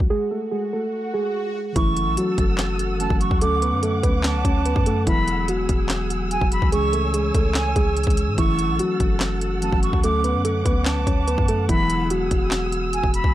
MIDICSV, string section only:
0, 0, Header, 1, 2, 480
1, 0, Start_track
1, 0, Key_signature, 3, "minor"
1, 0, Tempo, 413793
1, 121, Time_signature, 4, 2, 24, 8
1, 15476, End_track
2, 0, Start_track
2, 0, Title_t, "String section"
2, 0, Program_c, 0, 48
2, 2039, Note_on_c, 0, 69, 83
2, 2039, Note_on_c, 0, 88, 93
2, 2040, Note_on_c, 0, 78, 78
2, 3940, Note_off_c, 0, 69, 0
2, 3940, Note_off_c, 0, 88, 0
2, 3959, Note_on_c, 0, 61, 86
2, 3959, Note_on_c, 0, 86, 97
2, 5860, Note_off_c, 0, 61, 0
2, 5860, Note_off_c, 0, 86, 0
2, 5880, Note_on_c, 0, 68, 88
2, 5880, Note_on_c, 0, 88, 100
2, 7753, Note_off_c, 0, 78, 0
2, 7781, Note_off_c, 0, 68, 0
2, 7801, Note_on_c, 0, 73, 85
2, 7802, Note_on_c, 0, 80, 79
2, 9702, Note_off_c, 0, 73, 0
2, 9702, Note_off_c, 0, 80, 0
2, 9721, Note_on_c, 0, 69, 84
2, 9721, Note_on_c, 0, 78, 80
2, 11594, Note_off_c, 0, 88, 0
2, 11621, Note_off_c, 0, 69, 0
2, 11640, Note_on_c, 0, 86, 93
2, 11641, Note_on_c, 0, 61, 86
2, 13541, Note_off_c, 0, 61, 0
2, 13541, Note_off_c, 0, 86, 0
2, 13561, Note_on_c, 0, 68, 83
2, 13561, Note_on_c, 0, 88, 94
2, 15434, Note_off_c, 0, 78, 0
2, 15461, Note_off_c, 0, 68, 0
2, 15476, Note_off_c, 0, 88, 0
2, 15476, End_track
0, 0, End_of_file